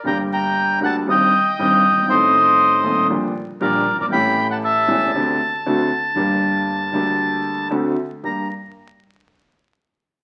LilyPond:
<<
  \new Staff \with { instrumentName = "Bandoneon" } { \time 4/4 \key g \minor \tempo 4 = 117 << { bes''8 bes''4 a''8 g''2 | ees''2 r4 d''8. d''16 | b''8. a''16 a''2.~ | a''2. r4 |
bes''8 r2. r8 | } \\ { g''8 g''4 fis''8 ees''2 | c''2 r4 bes'8. bes'16 | g''8. fis''16 e''4 r2 | r1 |
r1 | } >> }
  \new Staff \with { instrumentName = "Grand piano" } { \clef bass \time 4/4 \key g \minor <g,, g, d g bes g'>4. <d, d g bes g'>8 <g,, g, ees g c' g'>8 r8 <g,, g, ees g c' g'>8 r32 fis,,32 g,,32 aes,,32 | <a,, a, ees a c' a'>4. <ees,, ees, ees a c' a'>8 <bes,, bes, d g bes g'>8 r8 <bes,, bes, d g bes g'>8 r32 fis,,32 g,,32 aes,,32 | <a,, a, e a cis' g'>4. <e,, e, e a cis' g'>8 <d, d a c' g'>8 r8 <d, d a c' fis'>8 r8 | <g,, g, d g bes g'>4. <d, d g bes g'>4. <d, d a c' fis'>8 r8 |
<g, bes d' g'>8 r2. r8 | }
>>